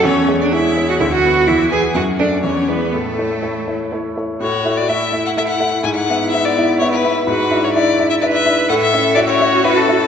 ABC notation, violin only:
X:1
M:3/4
L:1/16
Q:1/4=126
K:A
V:1 name="Violin"
c3 d e3 f e f3 | e2 g2 f2 d2 c2 B2 | A8 z4 | c3 d e3 f e f3 |
g f3 e d3 c B3 | B3 c d3 e d e3 | f e3 d c3 B A3 |]